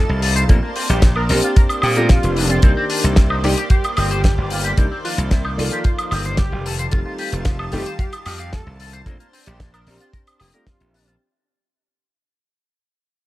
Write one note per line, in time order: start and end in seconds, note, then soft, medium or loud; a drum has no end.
0.00 0.47 G3 medium
0.00 0.47 D#4 medium
0.00 0.47 F4 medium
0.00 2.59 A5 medium
0.09 0.44 C2 medium
0.22 0.33 A4 medium
0.22 open hi-hat loud
0.36 0.43 C5 loud
0.36 closed hi-hat medium
0.48 0.60 A#1 loud
0.48 0.56 A3 medium
0.48 0.56 A#3 loud
0.48 6.61 A#3 medium
0.48 0.56 C4 medium
0.48 0.56 D4 medium
0.48 0.56 F4 medium
0.48 6.61 C5 medium
0.48 6.61 D5 medium
0.48 kick loud
0.48 closed hi-hat medium
0.63 0.69 A#3 medium
0.76 0.86 C4 medium
0.76 open hi-hat loud
0.89 1.24 A#1 medium
0.89 1.03 G4 loud
0.89 closed hi-hat medium
1.02 1.13 A#2 medium
1.02 kick loud
1.02 snare loud
1.02 closed hi-hat medium
1.16 1.20 D4 medium
1.16 1.25 A#4 medium
1.16 high woodblock medium
1.29 1.40 A#1 loud
1.29 1.94 C4 medium
1.29 1.94 D4 medium
1.29 1.95 G4 medium
1.29 1.38 A#4 medium
1.29 open hi-hat loud
1.42 1.50 F4 loud
1.42 closed hi-hat medium
1.56 1.60 A#4 medium
1.56 kick loud
1.56 closed hi-hat medium
1.69 closed hi-hat medium
1.69 high woodblock medium
1.82 2.18 A#2 medium
1.82 1.93 A#3 medium
1.82 1.92 G4 medium
1.82 open hi-hat loud
1.82 high woodblock medium
1.96 2.07 A3 medium
1.96 2.07 C4 medium
1.96 2.07 D4 medium
1.96 2.07 F4 loud
1.96 2.05 G4 medium
1.96 2.07 A#4 loud
1.96 closed hi-hat medium
2.09 2.50 F4 loud
2.09 kick loud
2.09 snare loud
2.09 closed hi-hat medium
2.23 2.58 F1 medium
2.23 closed hi-hat medium
2.36 2.47 D4 medium
2.36 open hi-hat loud
2.50 2.57 F4 loud
2.50 closed hi-hat medium
2.62 2.73 C2 loud
2.62 9.02 D#3 medium
2.62 3.41 D#3 medium
2.62 3.40 A#3 medium
2.62 2.70 C4 loud
2.62 3.41 D4 medium
2.62 3.41 G4 medium
2.62 kick loud
2.62 closed hi-hat medium
2.77 2.84 C4 medium
2.90 3.00 D4 medium
2.90 open hi-hat loud
3.04 3.39 C2 medium
3.04 closed hi-hat medium
3.16 3.27 C3 medium
3.16 kick loud
3.16 snare loud
3.16 closed hi-hat medium
3.30 3.35 D#4 medium
3.30 high woodblock medium
3.44 3.54 C2 loud
3.44 3.51 A#3 loud
3.44 3.51 D4 medium
3.44 3.51 D#4 loud
3.44 3.57 G4 loud
3.44 3.51 G4 loud
3.44 open hi-hat loud
3.57 3.64 G4 loud
3.57 closed hi-hat medium
3.70 3.84 G4 medium
3.70 3.75 C5 medium
3.70 kick loud
3.70 closed hi-hat medium
3.84 closed hi-hat medium
3.84 high woodblock medium
3.97 4.32 G1 medium
3.97 4.08 C4 medium
3.97 4.72 G4 loud
3.97 open hi-hat loud
3.97 high woodblock medium
4.11 4.21 C5 loud
4.11 closed hi-hat medium
4.24 kick loud
4.24 snare loud
4.24 closed hi-hat medium
4.38 4.72 G1 medium
4.50 4.61 F4 medium
4.50 open hi-hat loud
4.64 4.71 G4 loud
4.64 closed hi-hat medium
4.77 4.88 C2 loud
4.77 4.85 A#3 medium
4.77 4.85 C4 loud
4.77 4.85 D4 medium
4.77 4.85 D#4 medium
4.77 4.85 G4 loud
4.77 kick loud
4.77 closed hi-hat medium
4.91 4.98 C4 medium
5.05 5.15 D4 medium
5.05 5.18 F4 medium
5.05 open hi-hat loud
5.18 5.53 C2 medium
5.18 closed hi-hat medium
5.31 5.42 C3 medium
5.31 kick loud
5.31 snare loud
5.31 closed hi-hat medium
5.45 5.49 D#4 medium
5.45 high woodblock medium
5.57 5.68 C2 medium
5.57 6.64 D#3 medium
5.57 6.63 A#3 medium
5.57 6.12 F4 loud
5.57 6.64 A4 medium
5.57 6.64 D5 medium
5.57 open hi-hat loud
5.71 5.78 G4 loud
5.71 closed hi-hat medium
5.84 5.89 C5 medium
5.84 kick loud
5.84 closed hi-hat medium
5.99 closed hi-hat medium
5.99 high woodblock medium
6.11 6.47 G1 medium
6.11 6.22 C4 medium
6.11 open hi-hat loud
6.11 high woodblock medium
6.25 6.35 C5 loud
6.25 closed hi-hat medium
6.37 6.71 G4 medium
6.37 kick medium
6.37 snare loud
6.37 closed hi-hat medium
6.52 6.87 F1 medium
6.65 9.04 G3 medium
6.65 9.04 F4 medium
6.65 6.76 A4 medium
6.65 11.17 A5 medium
6.65 open hi-hat loud
6.79 6.86 C5 loud
6.79 closed hi-hat medium
6.91 7.03 F1 loud
6.91 7.69 A3 medium
6.91 7.69 C4 medium
6.91 7.70 D#4 medium
6.91 6.99 F4 loud
6.91 7.70 G4 medium
6.91 kick loud
6.91 closed hi-hat medium
7.06 7.12 F4 medium
7.18 7.29 G4 medium
7.18 open hi-hat loud
7.32 7.67 F1 medium
7.32 closed hi-hat medium
7.45 7.56 F3 medium
7.45 kick loud
7.45 snare loud
7.45 closed hi-hat medium
7.59 7.63 A4 medium
7.59 high woodblock medium
7.72 7.83 F1 loud
7.72 7.79 A3 loud
7.72 7.79 C4 medium
7.72 7.80 D#4 medium
7.72 7.86 G4 loud
7.72 7.80 G4 loud
7.72 open hi-hat loud
7.86 7.93 C5 loud
7.86 closed hi-hat medium
7.99 8.13 G4 medium
7.99 8.03 F5 medium
7.99 kick loud
7.99 closed hi-hat medium
8.13 closed hi-hat medium
8.13 high woodblock medium
8.26 8.61 F2 medium
8.26 8.36 F4 medium
8.26 8.52 G4 medium
8.26 open hi-hat loud
8.26 high woodblock medium
8.39 8.49 F5 loud
8.39 closed hi-hat medium
8.53 8.66 A4 loud
8.53 kick medium
8.53 snare loud
8.53 closed hi-hat medium
8.67 9.01 C2 medium
8.80 8.90 A4 medium
8.80 open hi-hat loud
8.93 9.00 C5 loud
8.93 closed hi-hat medium
9.06 9.16 A#1 loud
9.06 9.13 A3 medium
9.06 9.13 A#3 loud
9.06 9.13 C4 medium
9.06 11.18 D4 medium
9.06 9.13 D4 medium
9.06 9.14 F4 medium
9.06 11.18 C5 medium
9.06 kick loud
9.06 closed hi-hat medium
9.20 9.27 A#3 medium
9.20 closed hi-hat medium
9.33 9.43 C4 medium
9.33 open hi-hat loud
9.46 9.82 A#1 medium
9.46 9.60 G4 medium
9.46 closed hi-hat medium
9.60 9.70 A#2 medium
9.60 kick loud
9.60 snare loud
9.60 closed hi-hat medium
9.73 9.78 D4 medium
9.73 9.82 A#4 medium
9.73 closed hi-hat medium
9.73 high woodblock medium
9.87 9.97 A#1 loud
9.87 10.51 C4 medium
9.87 10.51 D4 medium
9.87 10.52 G4 medium
9.87 9.95 A#4 medium
9.87 open hi-hat loud
10.00 10.07 F4 loud
10.00 closed hi-hat medium
10.13 10.17 A#4 medium
10.13 kick loud
10.13 closed hi-hat medium
10.27 closed hi-hat medium
10.27 high woodblock medium
10.40 10.51 F1 medium
10.40 10.50 A#3 medium
10.40 10.49 G4 medium
10.40 open hi-hat loud
10.40 high woodblock medium
10.54 10.64 A3 medium
10.54 10.64 C4 medium
10.54 10.64 D4 medium
10.54 10.64 F4 loud
10.54 10.63 G4 medium
10.54 10.64 A#4 loud
10.54 closed hi-hat medium
10.67 11.08 F4 loud
10.67 kick loud
10.67 snare loud
10.67 closed hi-hat medium
10.80 11.15 A#1 medium
10.80 closed hi-hat medium
10.94 11.04 D4 medium
10.94 open hi-hat loud
11.07 11.14 F4 loud
11.07 closed hi-hat medium